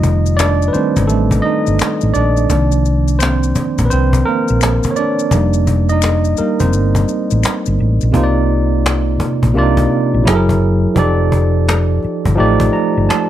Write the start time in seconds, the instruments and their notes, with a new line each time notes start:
Already playing: fingered electric bass F1, tine electric piano D#3 G3 A3 D#4 F4 D#5
0.04 cajon bass, maracas
0.26 maracas
0.37 tine electric piano D4 D5, finger snap, cajon slap, maracas
0.62 maracas
0.68 tine electric piano B4
0.73 tine electric piano D#3 G3 A3 C4 D4 C5, muted fingered electric bass stroke, maracas
0.96 fingered electric bass G1, cajon bass, cajon slap, maracas
1.07 fingered electric bass A1, tine electric piano A3 A4, maracas
1.31 cajon bass, maracas
1.42 tine electric piano D#4 D#5, cajon slap
1.67 fingered electric bass G1, maracas
1.79 finger snap, cajon slap, maracas
2.01 fingered electric bass A1, cajon slap, maracas
2.14 fingered electric bass A#1, tine electric piano D4 D5, maracas
2.37 maracas
2.50 fingered electric bass C2, tine electric piano D#3 F3 A#3 D4, cajon bass, maracas
2.72 maracas
2.85 cajon slap, maracas
3.08 maracas
3.19 tine electric piano C4 C5, finger snap, cajon slap, maracas
3.43 maracas
3.55 muted fingered electric bass stroke, cajon bass, maracas
3.78 fingered electric bass A#1, cajon bass, cajon slap, maracas
3.85 tine electric piano B4
3.90 fingered electric bass C2, tine electric piano C4 C5, cajon slap, maracas
4.13 cajon bass, maracas
4.26 tine electric piano A#3 A#4, cajon slap
4.48 fingered electric bass A#1, maracas
4.61 finger snap, cajon slap, maracas
4.83 cajon bass, cajon slap, maracas
4.91 tine electric piano C#5
4.96 tine electric piano D4 D5, cajon slap, maracas
5.19 maracas
5.31 fingered electric bass F1, tine electric piano G3 A#3 D#4, cajon bass, maracas
5.53 cajon slap, maracas
5.67 cajon bass, maracas
5.89 tine electric piano D#4 D#5, maracas
6.02 finger snap, cajon slap, maracas
6.25 maracas
6.37 tine electric piano G3 A#3 D#4 A#4, muted fingered electric bass stroke, cajon slap, maracas
6.60 fingered electric bass F1, tine electric piano C4 C5, cajon bass, cajon slap, maracas
6.73 fingered electric bass G1, maracas
6.95 cajon bass, maracas
7.08 cajon slap, maracas
7.31 fingered electric bass A1, maracas
7.43 finger snap, cajon slap, maracas
7.66 fingered electric bass G1, cajon slap, maracas
7.79 fingered electric bass A1, cajon slap
8.01 fingered electric bass A#1, cajon slap, maracas
8.12 fingered electric bass C2, tine electric piano C3 A#3 D#4 F4, cajon bass
8.17 tine electric piano C5
8.23 tine electric piano D5
8.50 cajon slap
8.86 cajon slap
9.20 muted fingered electric bass stroke, cajon bass
9.43 fingered electric bass A#1, cajon bass, cajon slap
9.54 fingered electric bass C2, tine electric piano C3 A#3 D4 F4, cajon slap
9.58 tine electric piano D5
9.63 tine electric piano D#4
9.77 cajon bass
9.92 cajon slap
10.14 fingered electric bass A#1
10.24 fingered electric bass F#1, tine electric piano F#3 E4 G#4, cajon slap
10.28 tine electric piano A4
10.35 tine electric piano A#4
10.49 cajon bass, cajon slap
10.60 cajon slap
10.95 fingered electric bass F1, tine electric piano F3 D#4 G4 A4, cajon bass
10.99 tine electric piano D5
11.32 cajon bass
11.69 cajon slap
12.02 muted fingered electric bass stroke, cajon slap
12.25 fingered electric bass G1, cajon bass, cajon slap
12.35 tine electric piano F3 D#4 G4, cajon slap
12.39 fingered electric bass A1, tine electric piano A3 D5
12.60 cajon bass
12.73 tine electric piano A#5, cajon slap
12.97 fingered electric bass G1
13.09 tine electric piano A5, cajon slap